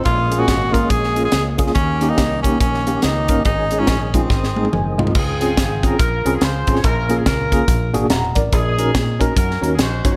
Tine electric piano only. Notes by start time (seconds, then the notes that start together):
0.06 A#2
0.31 A#3 C#4 F4 G#4
0.38 A#3 C#4 F4 G#4
0.72 A#3 C#4 F4 A#4
1.16 A#3 C#4 F4 G#4
1.58 A#3 C#4 F4 G#4
1.75 D#3
2.01 A#3 C#4 D#4 G4
2.10 A#3 C#4 D#4 G4
2.45 A#3 C#4 D#4 G4
2.87 A#3 C#4 D#4 G4
3.28 A#3 C#4 D#4 A#4
3.46 G#2
3.72 G#3 C#4 D#4 G#4
3.80 G#3 C#4 D#4 F4
4.14 G#3 C#4 D#4 F4
4.31 G#2
4.56 G#3 C4 D#4 G#4
4.73 G#5
4.98 G#3 C4 D#4 F4 D#5
5.16 C#3
5.41 C4 C#4 F4 G#4
5.83 C4 C#4 F4 G#4
6.25 C4 C#4 F4 G#4
6.67 C4 C#4 F4 G#4
6.84 A#2
7.09 A#3 C#4 F4 G#4
7.52 A#3 C#4 F4 G#4
7.68 A#2
7.94 A#3 D4 F#4 G#4
8.10 F#5 A#5
8.35 A#4 D5
8.52 A#2
8.78 C#4 D#4 F#4 A#4
9.20 C#4 D#4 F#4 A#4
9.61 C#4 D#4 F#4 A#4
10.05 C#4 D#4 F#4 C#5